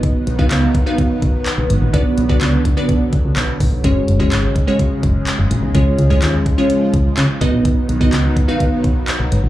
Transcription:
0.00 0.19 B1 loud
0.00 1.92 D#3 medium
0.00 5.71 F#3 medium
0.00 0.27 B3 loud
0.00 3.80 B3 medium
0.00 0.27 D#4 medium
0.00 0.27 F#4 medium
0.00 0.27 B4 medium
0.00 0.27 D#5 loud
0.00 kick loud
0.00 closed hi-hat loud
0.27 0.42 B1 loud
0.27 closed hi-hat medium
0.39 0.60 B3 medium
0.39 0.60 D#4 medium
0.39 0.60 F#4 medium
0.39 0.60 B4 medium
0.39 0.61 F5 loud
0.39 kick medium
0.51 0.66 C#2 loud
0.51 clap loud
0.51 closed hi-hat loud
0.75 kick loud
0.75 closed hi-hat medium
0.86 1.29 B3 medium
0.86 1.30 D#4 medium
0.86 1.30 F#4 medium
0.86 1.30 B4 medium
0.86 1.30 F5 loud
0.98 kick loud
0.98 closed hi-hat medium
1.22 1.38 B1 loud
1.22 kick loud
1.22 closed hi-hat medium
1.46 clap loud
1.46 closed hi-hat loud
1.58 1.66 B1 loud
1.70 1.78 G#1 medium
1.70 closed hi-hat medium
1.82 1.90 A#1 loud
1.93 2.09 B1 loud
1.93 3.82 D3 medium
1.93 2.10 B3 medium
1.93 2.10 D4 medium
1.93 2.10 F#4 medium
1.93 2.10 B4 medium
1.93 2.10 D5 loud
1.93 kick loud
1.93 closed hi-hat loud
2.18 2.33 B1 loud
2.18 closed hi-hat medium
2.29 2.51 B3 medium
2.29 2.51 D4 medium
2.29 2.51 F#4 medium
2.29 2.51 B4 medium
2.29 2.51 D5 loud
2.29 kick medium
2.41 2.57 C#2 loud
2.41 clap loud
2.41 closed hi-hat loud
2.65 kick loud
2.65 closed hi-hat medium
2.77 3.20 B3 medium
2.77 3.20 D4 medium
2.77 3.20 F#4 medium
2.77 3.20 B4 medium
2.77 3.20 D5 loud
2.89 3.04 B1 loud
2.89 kick loud
2.89 closed hi-hat medium
3.13 3.18 C#2 medium
3.13 kick loud
3.13 closed hi-hat medium
3.25 3.32 C#2 medium
3.36 3.44 B1 medium
3.36 clap loud
3.36 closed hi-hat loud
3.60 3.68 A#1 loud
3.60 kick loud
3.60 open hi-hat loud
3.72 3.80 B1 loud
3.84 4.00 F#1 loud
3.84 7.38 C#3 medium
3.84 4.00 G#3 medium
3.84 7.38 G#3 loud
3.84 4.00 C#4 medium
3.84 4.00 F#4 medium
3.84 4.00 G#4 medium
3.84 4.00 C#5 medium
3.84 kick loud
3.84 closed hi-hat loud
4.08 4.23 F#1 loud
4.08 closed hi-hat medium
4.20 4.41 G#3 medium
4.20 4.41 C#4 medium
4.20 4.41 F#4 medium
4.20 4.41 G#4 medium
4.20 4.42 C#5 loud
4.20 kick medium
4.32 4.47 G#1 loud
4.32 clap loud
4.32 closed hi-hat loud
4.56 kick loud
4.56 closed hi-hat medium
4.67 5.10 G#3 medium
4.67 5.11 C#4 medium
4.67 5.11 F#4 medium
4.67 5.11 G#4 medium
4.67 5.11 C#5 loud
4.79 kick loud
4.79 closed hi-hat medium
5.03 5.19 F#1 loud
5.03 kick loud
5.03 closed hi-hat medium
5.27 clap loud
5.27 closed hi-hat loud
5.39 5.47 F#1 medium
5.51 5.59 A#1 loud
5.51 closed hi-hat medium
5.63 5.71 B1 medium
5.74 5.90 C#2 loud
5.74 7.40 F3 medium
5.74 5.91 G#3 medium
5.74 5.91 C#4 medium
5.74 5.91 F4 medium
5.74 5.91 G#4 medium
5.74 5.91 C#5 loud
5.74 kick loud
5.74 closed hi-hat medium
5.99 6.14 C#2 loud
5.99 closed hi-hat medium
6.10 6.32 G#3 medium
6.10 6.32 C#4 medium
6.10 6.32 F4 medium
6.10 6.32 G#4 medium
6.10 6.32 C#5 loud
6.10 kick medium
6.22 6.38 D#2 loud
6.22 clap loud
6.22 closed hi-hat loud
6.46 kick loud
6.46 closed hi-hat medium
6.58 7.01 G#3 medium
6.58 7.01 C#4 medium
6.58 7.01 F4 medium
6.58 7.01 G#4 medium
6.58 7.01 C#5 loud
6.70 closed hi-hat medium
6.94 7.09 C#2 loud
6.94 kick loud
6.94 closed hi-hat medium
7.17 7.25 C#3 medium
7.17 clap loud
7.17 closed hi-hat loud
7.41 7.49 B1 loud
7.41 9.49 D#3 medium
7.41 9.49 F#3 medium
7.41 7.89 B3 loud
7.41 9.49 B3 medium
7.41 7.89 D#4 medium
7.41 7.89 F#4 medium
7.41 7.89 B4 medium
7.41 7.89 D#5 loud
7.41 kick loud
7.41 closed hi-hat medium
7.53 7.61 A#1 loud
7.65 7.81 B1 loud
7.65 kick loud
7.65 closed hi-hat loud
7.89 8.04 B1 loud
7.89 closed hi-hat medium
8.01 8.22 B3 medium
8.01 8.22 D#4 medium
8.01 8.22 F#4 medium
8.01 8.22 B4 medium
8.01 8.22 D#5 loud
8.01 kick loud
8.13 8.28 C#2 loud
8.13 clap loud
8.13 closed hi-hat loud
8.37 kick loud
8.37 closed hi-hat medium
8.48 8.91 B3 medium
8.48 8.91 D#4 medium
8.48 8.91 F#4 medium
8.48 8.92 B4 medium
8.48 8.92 F5 loud
8.60 kick loud
8.60 closed hi-hat medium
8.84 9.00 B1 loud
8.84 kick loud
8.84 closed hi-hat medium
9.08 clap loud
9.08 closed hi-hat loud
9.20 9.28 B1 medium
9.32 9.40 G#1 medium
9.32 closed hi-hat medium
9.44 9.49 A#1 loud

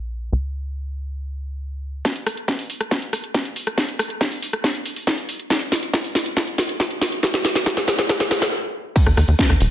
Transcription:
0.00 0.30 A#1 medium
0.32 2.03 C#2 medium
2.05 kick loud
2.05 snare soft
2.05 closed hi-hat medium
2.16 closed hi-hat medium
2.27 cross-stick medium
2.27 open hi-hat loud
2.37 closed hi-hat soft
2.48 kick loud
2.48 snare soft
2.48 closed hi-hat medium
2.59 open hi-hat medium
2.70 open hi-hat loud
2.81 cross-stick medium
2.81 closed hi-hat medium
2.91 kick loud
2.91 snare medium
2.91 closed hi-hat medium
3.02 closed hi-hat medium
3.13 cross-stick medium
3.13 open hi-hat loud
3.24 closed hi-hat medium
3.34 kick loud
3.34 snare medium
3.34 closed hi-hat medium
3.45 closed hi-hat medium
3.56 open hi-hat loud
3.67 cross-stick medium
3.67 closed hi-hat medium
3.78 kick loud
3.78 snare medium
3.78 closed hi-hat medium
3.89 closed hi-hat medium
3.99 cross-stick medium
3.99 open hi-hat loud
4.10 closed hi-hat soft
4.21 kick loud
4.21 snare medium
4.21 closed hi-hat medium
4.32 open hi-hat medium
4.42 open hi-hat loud
4.53 cross-stick medium
4.53 closed hi-hat soft
4.64 kick loud
4.64 snare medium
4.64 closed hi-hat medium
4.75 closed hi-hat medium
4.86 open hi-hat loud
4.96 open hi-hat medium
5.07 kick loud
5.07 snare medium
5.07 closed hi-hat medium
5.18 closed hi-hat medium
5.29 open hi-hat loud
5.40 closed hi-hat soft
5.50 kick loud
5.50 snare medium
5.50 closed hi-hat medium
5.61 closed hi-hat soft
5.72 snare medium
5.72 open hi-hat loud
5.83 closed hi-hat medium
5.93 kick loud
5.93 snare medium
5.93 closed hi-hat medium
6.04 open hi-hat medium
6.15 snare medium
6.15 open hi-hat loud
6.26 closed hi-hat medium
6.37 kick loud
6.37 snare medium
6.37 closed hi-hat medium
6.47 closed hi-hat medium
6.58 snare medium
6.58 open hi-hat loud
6.69 closed hi-hat medium
6.80 kick loud
6.80 snare medium
6.80 closed hi-hat medium
6.91 closed hi-hat soft
7.01 snare medium
7.01 open hi-hat loud
7.12 closed hi-hat medium
7.23 kick loud
7.23 snare loud
7.23 closed hi-hat medium
7.34 snare medium
7.34 closed hi-hat medium
7.45 snare medium
7.45 open hi-hat loud
7.55 snare medium
7.55 closed hi-hat medium
7.66 kick loud
7.66 snare loud
7.66 closed hi-hat medium
7.77 snare medium
7.77 open hi-hat medium
7.88 snare loud
7.88 open hi-hat loud
7.99 snare medium
7.99 closed hi-hat soft
8.09 kick loud
8.09 snare loud
8.09 closed hi-hat medium
8.20 snare loud
8.20 closed hi-hat soft
8.31 snare loud
8.31 open hi-hat loud
8.42 snare medium
8.42 open hi-hat medium
8.96 kick loud
8.96 closed hi-hat medium
8.96 crash loud
9.06 9.13 D#2 medium
9.06 cross-stick medium
9.06 closed hi-hat medium
9.17 9.24 D#2 loud
9.17 cross-stick medium
9.17 open hi-hat loud
9.28 9.35 D#2 medium
9.28 closed hi-hat medium
9.39 kick loud
9.39 snare loud
9.39 closed hi-hat medium
9.50 9.57 D#2 medium
9.50 cross-stick medium
9.50 open hi-hat medium
9.60 9.67 D#1 loud
9.60 open hi-hat loud

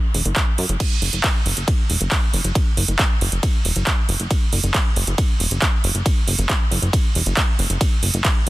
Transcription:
0.14 0.22 E1 medium
0.14 open hi-hat loud
0.25 0.33 F#1 medium
0.25 closed hi-hat medium
0.36 kick loud
0.36 clap loud
0.36 closed hi-hat medium
0.58 0.66 F#2 medium
0.58 open hi-hat medium
0.69 0.77 F#1 medium
0.69 closed hi-hat medium
0.80 kick loud
0.80 closed hi-hat medium
0.80 ride medium
0.80 crash medium
1.02 1.10 F#1 loud
1.02 open hi-hat loud
1.13 1.21 F#1 medium
1.13 closed hi-hat medium
1.24 kick loud
1.24 clap loud
1.24 closed hi-hat medium
1.24 ride medium
1.46 1.53 F#1 medium
1.46 open hi-hat medium
1.57 1.64 F#1 medium
1.57 closed hi-hat medium
1.68 kick loud
1.68 closed hi-hat medium
1.68 ride medium
1.90 1.97 E1 loud
1.90 open hi-hat loud
2.01 2.08 F#1 medium
2.01 closed hi-hat medium
2.12 kick loud
2.12 clap loud
2.12 closed hi-hat medium
2.12 ride medium
2.33 2.41 F#1 medium
2.33 open hi-hat loud
2.44 2.52 F#1 medium
2.44 closed hi-hat medium
2.55 kick loud
2.55 closed hi-hat medium
2.55 ride medium
2.77 2.85 F#1 loud
2.77 open hi-hat loud
2.88 2.96 F#1 medium
2.88 closed hi-hat medium
2.99 kick loud
2.99 clap loud
2.99 closed hi-hat medium
2.99 ride medium
3.21 3.29 F#1 loud
3.21 open hi-hat medium
3.32 3.40 F#1 medium
3.32 closed hi-hat medium
3.43 kick loud
3.43 closed hi-hat medium
3.43 ride medium
3.65 3.72 E1 medium
3.65 open hi-hat loud
3.76 3.83 F#1 medium
3.76 closed hi-hat medium
3.87 kick loud
3.87 clap loud
3.87 closed hi-hat medium
3.87 ride medium
4.09 4.16 F#1 loud
4.09 open hi-hat loud
4.20 4.27 F#1 medium
4.20 closed hi-hat medium
4.31 kick loud
4.31 closed hi-hat medium
4.31 ride medium
4.53 4.60 F#1 loud
4.53 open hi-hat loud
4.63 4.71 F#1 medium
4.63 closed hi-hat medium
4.74 kick loud
4.74 clap loud
4.74 closed hi-hat medium
4.74 ride medium
4.96 5.04 F#1 loud
4.96 open hi-hat loud
5.07 5.15 F#1 medium
5.07 closed hi-hat medium
5.18 kick loud
5.18 closed hi-hat medium
5.18 ride medium
5.40 5.48 E1 medium
5.40 open hi-hat loud
5.51 5.59 F#1 medium
5.51 closed hi-hat medium
5.62 kick loud
5.62 clap loud
5.62 closed hi-hat medium
5.62 ride medium
5.84 5.91 F#1 loud
5.84 open hi-hat loud
5.95 6.02 F#1 medium
5.95 closed hi-hat medium
6.06 kick loud
6.06 closed hi-hat medium
6.06 ride medium
6.27 6.35 F#1 loud
6.27 open hi-hat loud
6.38 6.46 F#1 medium
6.38 closed hi-hat medium
6.49 kick loud
6.49 clap loud
6.49 closed hi-hat medium
6.49 ride medium
6.71 6.79 F#1 loud
6.71 open hi-hat loud
6.82 6.90 F#1 medium
6.82 closed hi-hat medium
6.93 kick loud
6.93 closed hi-hat medium
6.93 ride medium
7.15 7.23 E1 medium
7.15 open hi-hat loud
7.26 7.34 F#1 medium
7.26 closed hi-hat medium
7.37 kick loud
7.37 clap loud
7.37 closed hi-hat medium
7.37 ride medium
7.59 7.67 F#1 loud
7.59 open hi-hat loud
7.70 7.77 F#1 medium
7.70 closed hi-hat medium
7.81 kick loud
7.81 closed hi-hat medium
7.81 ride medium
8.03 8.10 F#1 medium
8.03 open hi-hat loud
8.14 8.21 F#1 medium
8.14 closed hi-hat medium
8.25 kick loud
8.25 clap loud
8.25 closed hi-hat medium
8.25 ride medium

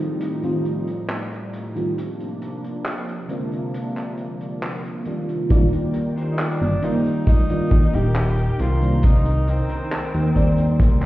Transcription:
0.00 1.94 A2 medium
0.00 0.38 D#3 medium
0.00 1.94 F3 medium
0.00 0.38 G3 medium
0.00 1.94 G3 medium
0.00 0.38 A3 medium
0.00 0.38 C4 medium
0.00 1.94 D#4 medium
0.00 0.39 F4 loud
0.00 closed hi-hat medium
0.21 closed hi-hat loud
0.43 0.63 D#3 medium
0.43 0.64 G3 medium
0.43 0.64 A3 medium
0.43 0.64 C4 medium
0.43 0.64 F4 loud
0.43 closed hi-hat soft
0.65 closed hi-hat medium
0.87 closed hi-hat medium
1.09 clap loud
1.09 closed hi-hat loud
1.33 closed hi-hat soft
1.53 closed hi-hat medium
1.75 1.88 D#3 medium
1.75 1.89 G3 medium
1.75 1.89 A3 medium
1.75 1.89 C4 medium
1.75 1.89 F4 medium
1.75 closed hi-hat medium
1.97 5.47 C3 medium
1.97 5.47 F3 medium
1.97 5.47 A#3 medium
1.97 5.47 D4 medium
1.97 closed hi-hat loud
2.20 closed hi-hat soft
2.42 closed hi-hat medium
2.64 closed hi-hat medium
2.85 clap loud
2.85 closed hi-hat medium
3.09 closed hi-hat medium
3.28 5.00 D3 medium
3.28 5.01 G#3 medium
3.28 5.01 A#3 medium
3.28 5.01 C4 medium
3.28 5.02 F4 medium
3.28 closed hi-hat medium
3.52 closed hi-hat soft
3.74 closed hi-hat loud
3.97 clap soft
3.97 closed hi-hat medium
4.18 closed hi-hat soft
4.41 closed hi-hat soft
4.63 clap loud
4.63 closed hi-hat medium
4.85 closed hi-hat medium
5.05 5.48 D#3 medium
5.05 5.48 G3 medium
5.05 5.49 A#3 medium
5.05 5.95 D4 medium
5.05 5.51 F4 medium
5.05 closed hi-hat medium
5.29 closed hi-hat soft
5.49 5.67 D#1 loud
5.49 6.74 D#3 loud
5.49 11.06 D#3 medium
5.49 6.74 G3 medium
5.49 6.74 A#3 medium
5.49 6.75 F4 loud
5.49 11.06 A#4 medium
5.49 6.75 D5 medium
5.49 8.56 G5 medium
5.49 kick loud
5.49 closed hi-hat loud
5.73 closed hi-hat medium
5.93 muted clean electric guitar stroke medium
5.93 closed hi-hat medium
6.16 6.38 D4 medium
6.16 6.39 D#4 medium
6.16 6.39 G4 medium
6.16 6.39 C5 medium
6.16 closed hi-hat medium
6.32 6.41 D#4 medium
6.39 6.86 D4 loud
6.39 clap loud
6.39 closed hi-hat loud
6.61 6.77 G1 medium
6.61 closed hi-hat medium
6.81 7.44 D#3 medium
6.81 7.44 G3 medium
6.81 7.44 A#3 medium
6.81 7.05 D4 medium
6.81 7.05 D#4 medium
6.81 7.28 D#4 loud
6.81 7.45 F4 loud
6.81 7.05 G4 medium
6.81 7.06 C5 loud
6.81 7.45 D5 medium
6.81 closed hi-hat medium
7.05 closed hi-hat medium
7.27 7.96 D#4 loud
7.27 kick loud
7.27 closed hi-hat loud
7.49 7.69 D#3 loud
7.49 7.70 G3 medium
7.49 7.70 A#3 medium
7.49 7.70 D4 medium
7.49 7.70 F4 loud
7.49 closed hi-hat medium
7.70 7.87 D#2 loud
7.70 muted clean electric guitar stroke medium
7.70 kick loud
7.70 closed hi-hat soft
7.92 8.50 D#1 medium
7.92 8.15 D4 medium
7.92 8.15 D#4 medium
7.92 8.15 G4 medium
7.92 8.62 G4 loud
7.92 8.16 A#4 medium
7.92 closed hi-hat medium
8.15 clap loud
8.15 closed hi-hat loud
8.38 closed hi-hat medium
8.58 9.60 C2 medium
8.58 9.30 D4 loud
8.58 9.30 D#4 medium
8.58 9.06 F4 loud
8.58 9.30 A#4 medium
8.58 9.31 C5 loud
8.58 10.34 A#5 medium
8.58 closed hi-hat medium
8.81 8.94 D#3 medium
8.81 8.94 G3 medium
8.81 8.94 A#3 medium
8.81 8.95 C4 medium
8.81 8.95 D4 medium
8.81 closed hi-hat medium
9.03 9.51 D#4 loud
9.03 kick loud
9.03 closed hi-hat loud
9.25 closed hi-hat medium
9.46 11.06 C4 loud
9.46 muted clean electric guitar stroke medium
9.46 closed hi-hat medium
9.68 9.91 D4 medium
9.68 9.91 D#4 medium
9.68 9.91 A#4 medium
9.68 9.92 C5 medium
9.68 closed hi-hat medium
9.92 clap loud
9.92 closed hi-hat loud
10.14 10.81 D#2 medium
10.14 closed hi-hat medium
10.34 11.06 D#3 medium
10.34 11.06 G3 medium
10.34 11.06 A#3 medium
10.34 11.06 C4 medium
10.34 10.58 D4 medium
10.34 10.58 D#4 medium
10.34 10.58 A#4 medium
10.34 10.59 C5 loud
10.34 11.06 D5 medium
10.34 11.06 C6 medium
10.34 kick medium
10.34 closed hi-hat medium
10.58 closed hi-hat medium
10.80 11.06 C2 medium
10.80 kick loud
10.80 closed hi-hat loud
11.02 clap soft
11.02 closed hi-hat medium

